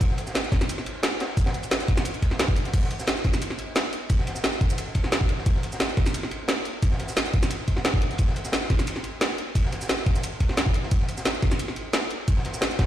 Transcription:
0.01 kick, closed hi-hat, ride, shaker
0.10 snare
0.18 closed hi-hat, ride, shaker
0.27 snare, shaker
0.35 snare, closed hi-hat, ride, shaker
0.44 snare, shaker
0.52 kick, snare, closed hi-hat, ride
0.61 snare, shaker
0.69 closed hi-hat, ride, shaker
0.78 snare
0.86 closed hi-hat, ride
1.03 snare, closed hi-hat, ride, shaker
1.20 snare, closed hi-hat, ride
1.29 snare
1.37 kick, closed hi-hat, ride, shaker
1.46 snare, ride
1.54 snare, closed hi-hat, shaker
1.63 ride, shaker
1.71 snare, closed hi-hat, ride, shaker
1.80 snare, closed hi-hat, shaker
1.88 kick, closed hi-hat, ride
1.97 snare, shaker
2.05 closed hi-hat, ride, shaker
2.14 closed hi-hat
2.22 kick, closed hi-hat, ride
2.31 snare
2.39 snare, closed hi-hat, ride, shaker
2.48 kick, shaker
2.56 closed hi-hat, ride
2.65 snare, closed hi-hat
2.73 kick, closed hi-hat, ride, crash, shaker
2.83 snare
2.90 closed hi-hat, ride, shaker
2.99 snare, shaker
3.07 snare, closed hi-hat, ride, shaker
3.17 snare, shaker
3.24 kick, snare, closed hi-hat, ride
3.33 snare, shaker
3.42 closed hi-hat, ride, shaker
3.50 snare
3.59 closed hi-hat, ride
3.76 snare, closed hi-hat, ride, shaker
3.93 closed hi-hat, ride
4.09 kick, closed hi-hat, ride, shaker
4.19 snare
4.27 snare, closed hi-hat, ride, shaker
4.35 snare, shaker
4.44 snare, closed hi-hat, ride, shaker
4.53 snare, shaker
4.61 kick, closed hi-hat, ride
4.70 snare, shaker
4.78 closed hi-hat, ride, shaker
4.95 kick, closed hi-hat, ride
5.04 snare
5.12 snare, closed hi-hat, ride, shaker
5.21 kick
5.29 closed hi-hat, ride
5.38 snare
5.46 kick, closed hi-hat, ride, shaker
5.55 snare
5.63 closed hi-hat, ride, shaker
5.72 snare, shaker
5.80 snare, closed hi-hat, ride, shaker
5.89 snare, shaker
5.97 kick, snare, closed hi-hat, ride
6.06 snare, shaker
6.14 closed hi-hat, ride, shaker
6.23 snare
6.31 closed hi-hat, ride
6.48 snare, closed hi-hat, ride, shaker
6.65 closed hi-hat, ride
6.82 kick, closed hi-hat, ride, shaker
6.91 snare
6.99 snare, closed hi-hat, ride, shaker
7.08 snare, shaker
7.16 snare, closed hi-hat, ride, shaker
7.26 snare, closed hi-hat, shaker
7.33 kick, closed hi-hat, ride
7.42 snare, shaker
7.50 closed hi-hat, ride, shaker
7.68 kick, closed hi-hat, ride
7.76 snare
7.85 snare, closed hi-hat, ride, shaker
7.94 kick
8.02 closed hi-hat, ride
8.11 snare, closed hi-hat
8.18 kick, closed hi-hat, ride, shaker
8.28 snare
8.36 closed hi-hat, ride, shaker
8.45 snare, shaker
8.52 snare, closed hi-hat, ride, shaker
8.62 snare, shaker
8.70 kick, snare, closed hi-hat, ride
8.79 snare, shaker
8.87 closed hi-hat, ride, shaker
8.96 snare
9.04 closed hi-hat, ride
9.21 snare, closed hi-hat, ride, shaker
9.38 closed hi-hat, ride
9.55 kick, closed hi-hat, ride, shaker
9.65 snare
9.72 snare, closed hi-hat, ride, shaker
9.81 snare, shaker
9.89 snare, closed hi-hat, ride, shaker
9.98 snare, shaker
10.06 kick, closed hi-hat, ride
10.15 snare, shaker
10.23 closed hi-hat, ride, shaker
10.40 kick, closed hi-hat, ride
10.49 snare
10.57 snare, closed hi-hat, ride, shaker
10.66 kick
10.74 closed hi-hat, ride
10.83 snare
10.91 kick, closed hi-hat, ride, shaker
11.00 snare
11.09 closed hi-hat, ride, shaker
11.17 snare, shaker
11.25 snare, closed hi-hat, ride, shaker
11.34 snare, shaker
11.42 kick, snare, closed hi-hat, ride
11.51 snare, shaker
11.59 closed hi-hat, ride, shaker
11.68 snare
11.76 closed hi-hat, ride
11.93 snare, closed hi-hat, ride, shaker
12.11 closed hi-hat, ride
12.28 kick, closed hi-hat, ride, shaker
12.37 snare
12.45 snare, closed hi-hat, ride, shaker
12.53 snare, shaker
12.61 snare, closed hi-hat, ride, shaker
12.71 snare, closed hi-hat, shaker
12.79 kick, snare, closed hi-hat, ride

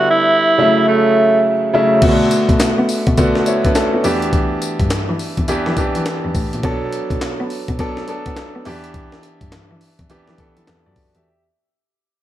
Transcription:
Already playing: D3 G3 B3 E4
0.11 E4
0.58 C#3 F#3 A3 E4
0.88 A3
1.73 C#3 F#3 A3 E4
2.02 B2 C#3 A3 B3 F#4, kick, closed hi-hat, crash
2.09 D3
2.31 closed hi-hat, tambourine
2.49 B2, kick, closed hi-hat
2.60 B3, snare, clap, closed hi-hat, tambourine
2.78 B3
2.89 open hi-hat, tambourine
3.07 B2, kick, closed hi-hat
3.17 D3 A3 B3 F#4, kick, closed hi-hat, tambourine
3.35 snare
3.46 B3 E4 C#5, closed hi-hat, tambourine
3.65 B3 D4 B4, kick, closed hi-hat
3.75 C#4 A4, snare, clap, closed hi-hat, tambourine
3.94 A3 B3 F#4
4.04 E2 E3 B3 D4 G4, open hi-hat, tambourine
4.22 closed hi-hat
4.33 kick, closed hi-hat
4.62 closed hi-hat, tambourine
4.80 G2, kick, closed hi-hat
4.90 E3, snare, clap, closed hi-hat, tambourine
5.09 E3
5.19 open hi-hat, tambourine
5.37 E2, kick, closed hi-hat
5.48 E3 B3 D4 G4, closed hi-hat, tambourine
5.66 E3, snare
5.77 E3 B3 D4 G4, kick, closed hi-hat, tambourine
5.95 E3, closed hi-hat
6.06 snare, clap, closed hi-hat, tambourine
6.25 E2
6.35 A2, kick, open hi-hat, tambourine
6.53 A#2, closed hi-hat
6.63 B2 F#3 B3 D4 A4, kick, closed hi-hat
6.93 closed hi-hat
7.10 B2, kick, closed hi-hat
7.21 B3, snare, clap, closed hi-hat
7.40 B3
7.50 open hi-hat
7.68 B2, kick, closed hi-hat
7.79 F#3 B3 D4 A4, kick, closed hi-hat
7.97 snare
8.08 F#3 B3 D4 A4, closed hi-hat
8.26 B3, kick, closed hi-hat
8.36 snare, clap, closed hi-hat
8.55 B3
8.65 E2 E3 B3 D4 G4, open hi-hat
8.84 closed hi-hat
8.94 kick, closed hi-hat
9.12 snare
9.23 closed hi-hat
9.41 G2, kick, closed hi-hat
9.52 E3, snare, clap, closed hi-hat
9.71 E3
9.81 open hi-hat
9.99 E2, kick, closed hi-hat
10.10 E3 B3 D4 G4, closed hi-hat
10.28 E3, snare
10.38 E3 B3 D4 A4, kick, closed hi-hat
10.57 E3, closed hi-hat
10.67 E2 D4 B4, snare, clap, closed hi-hat
10.86 F#2 F#4 D5
10.96 kick, open hi-hat
11.15 E2 G4 E5, closed hi-hat

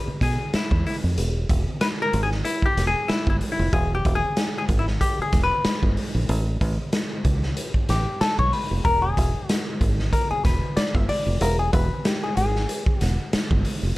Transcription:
Already playing: B4
0.08 muted fingered electric bass stroke
0.21 B2 G#4, kick, snare, closed hi-hat
0.54 E4, muted fingered electric bass stroke, snare, closed hi-hat
0.71 E2, kick
0.86 E4, open hi-hat
1.04 F2
1.18 E1, closed hi-hat
1.49 E1, kick, closed hi-hat
1.81 B4, snare, closed hi-hat
2.02 A#4
2.13 G#1, closed hi-hat
2.23 G#4
2.32 snare
2.45 E4, closed hi-hat
2.62 G4, muted fingered electric bass stroke, kick
2.77 E1, snare, closed hi-hat
2.87 G#4
3.08 E4, muted fingered electric bass stroke, snare, closed hi-hat
3.27 G1 E4, kick
3.41 open hi-hat
3.52 E4
3.59 F1
3.73 E1 G#4, kick, closed hi-hat
3.95 G4
4.05 E1, kick, closed hi-hat
4.15 G#4
4.37 snare, closed hi-hat
4.58 G#4
4.69 G#1, kick, closed hi-hat
4.79 E4
4.88 snare
5.01 G4, kick, closed hi-hat
5.19 G#4, muted fingered electric bass stroke
5.33 E1, kick, snare, closed hi-hat
5.43 B4
5.65 muted fingered electric bass stroke, snare, closed hi-hat
5.83 G1, kick
5.97 open hi-hat
6.15 A#1
6.29 A1, closed hi-hat
6.61 A1, kick, closed hi-hat
6.93 snare, closed hi-hat
7.25 C#2, kick, closed hi-hat
7.43 snare
7.57 closed hi-hat
7.74 muted fingered electric bass stroke, kick
7.89 A1 G4, snare, closed hi-hat
8.21 A4, muted fingered electric bass stroke, snare, closed hi-hat
8.39 B1 C#5, kick
8.53 B4, open hi-hat
8.71 F1
8.85 E1 A#4, kick, closed hi-hat
9.02 G#4
9.17 E1, kick, closed hi-hat
9.48 F#4, snare, closed hi-hat
9.81 G#1, kick, closed hi-hat
9.99 snare
10.13 A#4, kick, closed hi-hat
10.31 G#4, muted fingered electric bass stroke
10.45 E1 B4, kick, snare, closed hi-hat
10.76 D5, muted fingered electric bass stroke, snare, closed hi-hat
10.95 G1 E5, kick
11.09 D5, open hi-hat
11.26 F1
11.41 E1 A#4, closed hi-hat
11.59 G#4
11.73 E1 B4, kick, closed hi-hat
12.05 G4, snare, closed hi-hat
12.24 G#4
12.37 G#1 G#4, closed hi-hat
12.56 snare
12.69 closed hi-hat
12.86 muted fingered electric bass stroke, kick
13.01 E1 F#4, snare, closed hi-hat
13.33 muted fingered electric bass stroke, snare, closed hi-hat
13.51 G1, kick
13.65 open hi-hat
13.83 F1

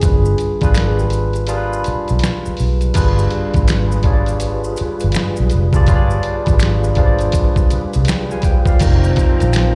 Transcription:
Already playing: G#4
0.01 G1 G3 D4 F4 G#4 B4, kick, closed hi-hat, maracas
0.25 maracas
0.38 closed hi-hat, maracas
0.61 G#1 G3 D4 F4 G#4 B4, kick, closed hi-hat, maracas
0.74 finger snap, snare, closed hi-hat, maracas
0.78 A#4, finger snap
0.89 G#4
0.99 G4, maracas
1.06 G#4, closed hi-hat
1.13 maracas
1.33 closed hi-hat, maracas
1.47 G3 D4 F4 G#4, closed hi-hat, maracas
1.51 A#4
1.57 B4
1.73 maracas
1.84 muted fingered electric bass stroke, closed hi-hat, maracas
2.08 B1, closed hi-hat, maracas
2.19 closed hi-hat
2.24 finger snap, snare, maracas
2.46 muted fingered electric bass stroke, maracas
2.57 B1, open hi-hat, maracas
2.81 closed hi-hat, maracas
2.94 G1 G3 D4 F4 G#4 B4, kick, closed hi-hat, crash, maracas
3.19 maracas
3.31 closed hi-hat
3.54 G#1, kick, closed hi-hat, maracas
3.68 finger snap, snare, closed hi-hat, maracas
3.70 finger snap
3.92 maracas
4.03 G3 D4 F4 G#4 C#5, kick, closed hi-hat
4.13 D5
4.26 closed hi-hat, maracas
4.40 closed hi-hat, maracas
4.64 maracas
4.77 closed hi-hat, maracas
4.81 muted fingered electric bass stroke
5.00 closed hi-hat, maracas
5.04 G1
5.12 finger snap, closed hi-hat, maracas
5.16 finger snap, snare
5.36 B1, maracas
5.50 F1, closed hi-hat, maracas
5.73 G3 D4 F4 G#4 D5, kick, maracas
5.86 G1 G3 D4 F4 G#4 C#5, kick, closed hi-hat, maracas
5.96 D5
6.10 maracas
6.23 closed hi-hat
6.46 G#1, kick, closed hi-hat, maracas
6.60 finger snap, snare, closed hi-hat, maracas
6.63 finger snap
6.84 maracas
6.95 G3 D4 F4 G#4, kick, closed hi-hat
7.00 C5
7.06 D5
7.19 closed hi-hat, maracas
7.32 kick, closed hi-hat, maracas
7.56 kick, maracas
7.70 muted fingered electric bass stroke, closed hi-hat, maracas
7.93 C2, closed hi-hat, maracas
8.05 G5, finger snap, closed hi-hat, maracas
8.09 finger snap, snare
8.31 F5 G#5, maracas
8.42 F3 G5, kick, closed hi-hat, maracas
8.66 D5 F5, kick, maracas
8.80 F1 G2 D#3 F3 C4 D#4 G4 A#4 G5 A#5, kick, closed hi-hat, crash, maracas
8.84 A#4
9.04 maracas
9.16 kick, closed hi-hat, maracas
9.40 A#1, closed hi-hat, maracas
9.53 finger snap, snare, closed hi-hat, maracas
9.56 finger snap

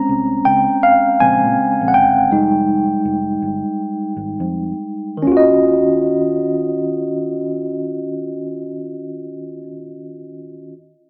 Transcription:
Already playing: G#3 C4 C#4 A#5
0.09 C2
0.45 C#2 G5
0.83 F5
1.20 A#1 C#3 G#3 C4 G#5
1.44 A#2
1.81 A#1
1.88 F#5
1.94 G1 G5
2.31 F1 G3 G#3 D#4
3.05 F1
3.42 G1
4.17 G#1
4.40 F2
5.17 D#3
5.22 C#4
5.27 D#2 F4
5.32 F#4
5.37 D#5

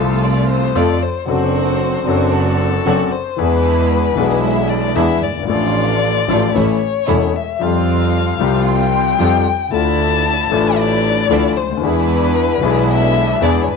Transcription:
Already playing: C2 C3 F3 A3 C4 F4 A4
0.24 D5
0.49 C5
0.75 F2 F3 A3 C4 F4 A4 D5
1.02 C5
1.27 F#1 F#2 F#3 C4 D4 F#4 A4 C5
2.05 F#1 F#2 F#3 C4 D4 F#4
2.09 A4
2.32 A4
2.85 F#1 F#2 F#3 C4 D4 F#4 A4
3.12 C5
3.36 E2 E3 G#3 B3 D4 E4 B4
3.41 G#4
4.15 B1 B2 E3 G#3 B3 D4 E4
4.19 G#4
4.43 E5
4.69 D5
4.95 E2 E3 G#3 B3 D4 E4 G#4 E5
5.23 G1 D5
5.30 F#1
5.37 G1
5.43 G#1
5.47 A1 A2 F3 A3 D4 F4 A4 D5
6.28 A1 A2 F3 A3 D4 F4 A4
6.55 A1 A2 E3 A3 C#4 E4 A4 C#5
7.07 E1 E2 E3 A3 C#4 E4 A4
7.36 E5
7.60 F2 F3 G3 C4 F4 G4 F5
8.39 C2 C3 F3 G3 C4 F4 G4
8.68 G5
9.19 F2 F3 G3 C4 F4 G4
9.71 D2 D3 A3 D4 E4 F4 A5
10.50 A1 A2 A3 D4 E4 F4
10.79 D5
11.29 D2 D3 E3 F3 A3 D4 E4 F4
11.56 D2 C5
11.63 C#2
11.71 D2
11.77 D#2
11.81 E2 E3 G#3 B3 D4 E4 G#4 B4
12.61 B1 B2 E3 G#3 B3 D4 E4
12.65 G#4
12.89 E5
13.41 E2 E3 G#3 B3 D4 E4 G#4 D5
13.62 C#5
13.68 G1 B4

